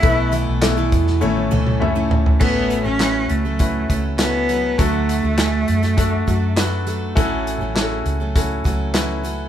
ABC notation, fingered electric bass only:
X:1
M:4/4
L:1/16
Q:1/4=101
K:A
V:1 name="Fingered electric bass" clef=bass
B,,,3 B,,,3 E,,2 A,,,2 C,,6 | A,,,3 A,,,3 C,,4 C,,6 | D,,3 D,,3 F,,4 F,,6 | A,,,3 A,,,3 C,,4 C,,6 |]